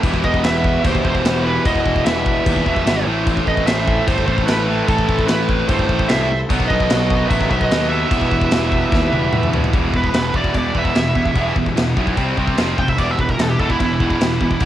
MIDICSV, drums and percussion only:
0, 0, Header, 1, 2, 480
1, 0, Start_track
1, 0, Key_signature, 1, "minor"
1, 0, Tempo, 404858
1, 47, Time_signature, 4, 2, 24, 8
1, 17371, End_track
2, 0, Start_track
2, 0, Title_t, "Drums"
2, 39, Note_on_c, 9, 49, 67
2, 41, Note_on_c, 9, 36, 109
2, 157, Note_off_c, 9, 49, 0
2, 159, Note_off_c, 9, 36, 0
2, 163, Note_on_c, 9, 36, 83
2, 281, Note_off_c, 9, 36, 0
2, 283, Note_on_c, 9, 36, 87
2, 402, Note_off_c, 9, 36, 0
2, 403, Note_on_c, 9, 36, 81
2, 521, Note_off_c, 9, 36, 0
2, 521, Note_on_c, 9, 49, 69
2, 530, Note_on_c, 9, 38, 113
2, 639, Note_off_c, 9, 49, 0
2, 649, Note_off_c, 9, 38, 0
2, 762, Note_on_c, 9, 36, 93
2, 881, Note_off_c, 9, 36, 0
2, 1002, Note_on_c, 9, 49, 68
2, 1003, Note_on_c, 9, 36, 113
2, 1120, Note_off_c, 9, 49, 0
2, 1122, Note_off_c, 9, 36, 0
2, 1124, Note_on_c, 9, 36, 87
2, 1242, Note_off_c, 9, 36, 0
2, 1242, Note_on_c, 9, 36, 81
2, 1361, Note_off_c, 9, 36, 0
2, 1362, Note_on_c, 9, 36, 81
2, 1481, Note_off_c, 9, 36, 0
2, 1483, Note_on_c, 9, 49, 64
2, 1492, Note_on_c, 9, 38, 122
2, 1601, Note_off_c, 9, 49, 0
2, 1611, Note_off_c, 9, 38, 0
2, 1962, Note_on_c, 9, 36, 112
2, 1964, Note_on_c, 9, 49, 62
2, 2081, Note_off_c, 9, 36, 0
2, 2081, Note_on_c, 9, 36, 80
2, 2083, Note_off_c, 9, 49, 0
2, 2199, Note_off_c, 9, 36, 0
2, 2201, Note_on_c, 9, 36, 87
2, 2320, Note_off_c, 9, 36, 0
2, 2322, Note_on_c, 9, 36, 84
2, 2441, Note_off_c, 9, 36, 0
2, 2442, Note_on_c, 9, 49, 66
2, 2451, Note_on_c, 9, 38, 118
2, 2561, Note_off_c, 9, 49, 0
2, 2570, Note_off_c, 9, 38, 0
2, 2679, Note_on_c, 9, 36, 92
2, 2798, Note_off_c, 9, 36, 0
2, 2920, Note_on_c, 9, 36, 121
2, 2921, Note_on_c, 9, 49, 63
2, 3038, Note_off_c, 9, 36, 0
2, 3038, Note_on_c, 9, 36, 81
2, 3040, Note_off_c, 9, 49, 0
2, 3156, Note_off_c, 9, 36, 0
2, 3157, Note_on_c, 9, 36, 77
2, 3275, Note_off_c, 9, 36, 0
2, 3277, Note_on_c, 9, 36, 85
2, 3396, Note_off_c, 9, 36, 0
2, 3398, Note_on_c, 9, 49, 68
2, 3408, Note_on_c, 9, 38, 114
2, 3517, Note_off_c, 9, 49, 0
2, 3526, Note_off_c, 9, 38, 0
2, 3873, Note_on_c, 9, 49, 65
2, 3875, Note_on_c, 9, 36, 113
2, 3992, Note_off_c, 9, 49, 0
2, 3994, Note_off_c, 9, 36, 0
2, 3996, Note_on_c, 9, 36, 82
2, 4115, Note_off_c, 9, 36, 0
2, 4116, Note_on_c, 9, 36, 88
2, 4234, Note_off_c, 9, 36, 0
2, 4236, Note_on_c, 9, 36, 84
2, 4354, Note_off_c, 9, 36, 0
2, 4354, Note_on_c, 9, 49, 70
2, 4363, Note_on_c, 9, 38, 115
2, 4472, Note_off_c, 9, 49, 0
2, 4482, Note_off_c, 9, 38, 0
2, 4594, Note_on_c, 9, 36, 90
2, 4712, Note_off_c, 9, 36, 0
2, 4833, Note_on_c, 9, 36, 122
2, 4833, Note_on_c, 9, 49, 64
2, 4951, Note_off_c, 9, 49, 0
2, 4952, Note_off_c, 9, 36, 0
2, 4953, Note_on_c, 9, 36, 86
2, 5071, Note_off_c, 9, 36, 0
2, 5071, Note_on_c, 9, 36, 81
2, 5189, Note_off_c, 9, 36, 0
2, 5192, Note_on_c, 9, 36, 83
2, 5310, Note_on_c, 9, 49, 67
2, 5311, Note_off_c, 9, 36, 0
2, 5319, Note_on_c, 9, 38, 116
2, 5429, Note_off_c, 9, 49, 0
2, 5438, Note_off_c, 9, 38, 0
2, 5788, Note_on_c, 9, 49, 59
2, 5790, Note_on_c, 9, 36, 117
2, 5906, Note_off_c, 9, 49, 0
2, 5909, Note_off_c, 9, 36, 0
2, 5909, Note_on_c, 9, 36, 79
2, 6028, Note_off_c, 9, 36, 0
2, 6030, Note_on_c, 9, 36, 90
2, 6148, Note_off_c, 9, 36, 0
2, 6148, Note_on_c, 9, 36, 80
2, 6262, Note_on_c, 9, 49, 65
2, 6266, Note_off_c, 9, 36, 0
2, 6271, Note_on_c, 9, 38, 118
2, 6381, Note_off_c, 9, 49, 0
2, 6390, Note_off_c, 9, 38, 0
2, 6505, Note_on_c, 9, 36, 88
2, 6624, Note_off_c, 9, 36, 0
2, 6739, Note_on_c, 9, 49, 60
2, 6746, Note_on_c, 9, 36, 118
2, 6858, Note_off_c, 9, 49, 0
2, 6864, Note_off_c, 9, 36, 0
2, 6865, Note_on_c, 9, 36, 90
2, 6984, Note_off_c, 9, 36, 0
2, 6984, Note_on_c, 9, 36, 80
2, 7103, Note_off_c, 9, 36, 0
2, 7105, Note_on_c, 9, 36, 87
2, 7220, Note_on_c, 9, 49, 62
2, 7223, Note_off_c, 9, 36, 0
2, 7229, Note_on_c, 9, 38, 120
2, 7338, Note_off_c, 9, 49, 0
2, 7348, Note_off_c, 9, 38, 0
2, 7706, Note_on_c, 9, 36, 107
2, 7706, Note_on_c, 9, 49, 66
2, 7824, Note_off_c, 9, 49, 0
2, 7825, Note_off_c, 9, 36, 0
2, 7825, Note_on_c, 9, 36, 83
2, 7944, Note_off_c, 9, 36, 0
2, 7946, Note_on_c, 9, 36, 91
2, 8064, Note_off_c, 9, 36, 0
2, 8065, Note_on_c, 9, 36, 82
2, 8180, Note_on_c, 9, 49, 70
2, 8184, Note_off_c, 9, 36, 0
2, 8189, Note_on_c, 9, 38, 123
2, 8298, Note_off_c, 9, 49, 0
2, 8308, Note_off_c, 9, 38, 0
2, 8423, Note_on_c, 9, 36, 92
2, 8541, Note_off_c, 9, 36, 0
2, 8662, Note_on_c, 9, 36, 119
2, 8662, Note_on_c, 9, 49, 67
2, 8780, Note_off_c, 9, 36, 0
2, 8780, Note_off_c, 9, 49, 0
2, 8781, Note_on_c, 9, 36, 87
2, 8900, Note_off_c, 9, 36, 0
2, 8901, Note_on_c, 9, 36, 87
2, 9019, Note_off_c, 9, 36, 0
2, 9022, Note_on_c, 9, 36, 84
2, 9141, Note_off_c, 9, 36, 0
2, 9145, Note_on_c, 9, 49, 69
2, 9155, Note_on_c, 9, 38, 117
2, 9264, Note_off_c, 9, 49, 0
2, 9273, Note_off_c, 9, 38, 0
2, 9618, Note_on_c, 9, 36, 110
2, 9619, Note_on_c, 9, 49, 62
2, 9736, Note_off_c, 9, 36, 0
2, 9738, Note_off_c, 9, 49, 0
2, 9739, Note_on_c, 9, 36, 84
2, 9857, Note_off_c, 9, 36, 0
2, 9859, Note_on_c, 9, 36, 87
2, 9977, Note_off_c, 9, 36, 0
2, 9977, Note_on_c, 9, 36, 85
2, 10094, Note_on_c, 9, 49, 64
2, 10096, Note_off_c, 9, 36, 0
2, 10103, Note_on_c, 9, 38, 118
2, 10212, Note_off_c, 9, 49, 0
2, 10222, Note_off_c, 9, 38, 0
2, 10337, Note_on_c, 9, 36, 86
2, 10456, Note_off_c, 9, 36, 0
2, 10579, Note_on_c, 9, 36, 117
2, 10591, Note_on_c, 9, 38, 71
2, 10697, Note_off_c, 9, 36, 0
2, 10710, Note_off_c, 9, 38, 0
2, 10821, Note_on_c, 9, 48, 74
2, 10940, Note_off_c, 9, 48, 0
2, 11057, Note_on_c, 9, 47, 95
2, 11175, Note_off_c, 9, 47, 0
2, 11183, Note_on_c, 9, 45, 81
2, 11302, Note_off_c, 9, 45, 0
2, 11304, Note_on_c, 9, 43, 101
2, 11423, Note_off_c, 9, 43, 0
2, 11430, Note_on_c, 9, 43, 99
2, 11541, Note_on_c, 9, 36, 109
2, 11546, Note_on_c, 9, 52, 55
2, 11548, Note_off_c, 9, 43, 0
2, 11659, Note_off_c, 9, 36, 0
2, 11664, Note_off_c, 9, 52, 0
2, 11781, Note_on_c, 9, 36, 87
2, 11899, Note_off_c, 9, 36, 0
2, 11900, Note_on_c, 9, 36, 78
2, 12018, Note_off_c, 9, 36, 0
2, 12019, Note_on_c, 9, 52, 59
2, 12029, Note_on_c, 9, 38, 112
2, 12138, Note_off_c, 9, 52, 0
2, 12147, Note_off_c, 9, 38, 0
2, 12260, Note_on_c, 9, 36, 89
2, 12379, Note_off_c, 9, 36, 0
2, 12381, Note_on_c, 9, 36, 81
2, 12499, Note_off_c, 9, 36, 0
2, 12501, Note_on_c, 9, 36, 96
2, 12501, Note_on_c, 9, 52, 61
2, 12619, Note_off_c, 9, 36, 0
2, 12620, Note_off_c, 9, 52, 0
2, 12742, Note_on_c, 9, 36, 80
2, 12860, Note_off_c, 9, 36, 0
2, 12863, Note_on_c, 9, 36, 79
2, 12981, Note_off_c, 9, 36, 0
2, 12985, Note_on_c, 9, 52, 59
2, 12994, Note_on_c, 9, 38, 110
2, 13103, Note_off_c, 9, 52, 0
2, 13113, Note_off_c, 9, 38, 0
2, 13224, Note_on_c, 9, 36, 81
2, 13342, Note_off_c, 9, 36, 0
2, 13344, Note_on_c, 9, 36, 80
2, 13460, Note_on_c, 9, 52, 53
2, 13462, Note_off_c, 9, 36, 0
2, 13463, Note_on_c, 9, 36, 93
2, 13579, Note_off_c, 9, 52, 0
2, 13582, Note_off_c, 9, 36, 0
2, 13706, Note_on_c, 9, 36, 85
2, 13824, Note_off_c, 9, 36, 0
2, 13827, Note_on_c, 9, 36, 74
2, 13946, Note_off_c, 9, 36, 0
2, 13954, Note_on_c, 9, 52, 60
2, 13964, Note_on_c, 9, 38, 114
2, 14073, Note_off_c, 9, 52, 0
2, 14082, Note_off_c, 9, 38, 0
2, 14189, Note_on_c, 9, 36, 84
2, 14307, Note_off_c, 9, 36, 0
2, 14310, Note_on_c, 9, 36, 77
2, 14429, Note_off_c, 9, 36, 0
2, 14430, Note_on_c, 9, 36, 93
2, 14431, Note_on_c, 9, 52, 55
2, 14548, Note_off_c, 9, 36, 0
2, 14549, Note_off_c, 9, 52, 0
2, 14670, Note_on_c, 9, 36, 79
2, 14789, Note_off_c, 9, 36, 0
2, 14790, Note_on_c, 9, 36, 84
2, 14908, Note_off_c, 9, 36, 0
2, 14909, Note_on_c, 9, 52, 56
2, 14919, Note_on_c, 9, 38, 113
2, 15028, Note_off_c, 9, 52, 0
2, 15037, Note_off_c, 9, 38, 0
2, 15151, Note_on_c, 9, 36, 85
2, 15270, Note_off_c, 9, 36, 0
2, 15272, Note_on_c, 9, 36, 84
2, 15390, Note_on_c, 9, 52, 56
2, 15391, Note_off_c, 9, 36, 0
2, 15392, Note_on_c, 9, 36, 97
2, 15509, Note_off_c, 9, 52, 0
2, 15511, Note_off_c, 9, 36, 0
2, 15633, Note_on_c, 9, 36, 84
2, 15751, Note_off_c, 9, 36, 0
2, 15754, Note_on_c, 9, 36, 83
2, 15873, Note_off_c, 9, 36, 0
2, 15874, Note_on_c, 9, 52, 62
2, 15884, Note_on_c, 9, 38, 119
2, 15993, Note_off_c, 9, 52, 0
2, 16002, Note_off_c, 9, 38, 0
2, 16118, Note_on_c, 9, 36, 83
2, 16236, Note_off_c, 9, 36, 0
2, 16240, Note_on_c, 9, 36, 85
2, 16358, Note_off_c, 9, 36, 0
2, 16362, Note_on_c, 9, 36, 96
2, 16364, Note_on_c, 9, 52, 62
2, 16481, Note_off_c, 9, 36, 0
2, 16483, Note_off_c, 9, 52, 0
2, 16602, Note_on_c, 9, 36, 84
2, 16721, Note_off_c, 9, 36, 0
2, 16723, Note_on_c, 9, 36, 79
2, 16841, Note_off_c, 9, 36, 0
2, 16847, Note_on_c, 9, 52, 63
2, 16856, Note_on_c, 9, 38, 112
2, 16965, Note_off_c, 9, 52, 0
2, 16975, Note_off_c, 9, 38, 0
2, 17082, Note_on_c, 9, 36, 85
2, 17201, Note_off_c, 9, 36, 0
2, 17201, Note_on_c, 9, 36, 78
2, 17314, Note_on_c, 9, 52, 58
2, 17319, Note_off_c, 9, 36, 0
2, 17320, Note_on_c, 9, 36, 92
2, 17371, Note_off_c, 9, 36, 0
2, 17371, Note_off_c, 9, 52, 0
2, 17371, End_track
0, 0, End_of_file